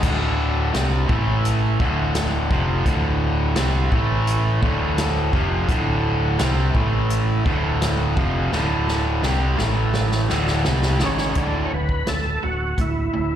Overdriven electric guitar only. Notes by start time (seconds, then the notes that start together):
0.03 D2 A2 D3
0.74 C3 G3 C4
1.08 A2 E3 A3
1.80 D2 A2 D3
2.51 F2 C3 F3
2.85 D2 A2 D3
3.56 C3 G3 C4
3.92 A2 E3 A3
4.62 D2 A2 D3
5.33 F2 C3 F3
5.69 D2 A2 D3
6.39 C3 G3 C4
6.75 A2 E3 A3
7.45 D2 A2 D3
8.16 F2 C3 F3
8.52 D2 A2 D3
9.23 C3 G3 C4
9.58 A2 E3 A3
10.30 D2 A2 D3
10.65 C3 G3 C4
11.00 G#2 D#3 G#3
11.37 D2 A2 D3
11.72 D2 A2
12.07 D2 A2
12.43 D2 A2
12.78 D2 A2
13.13 D2 A2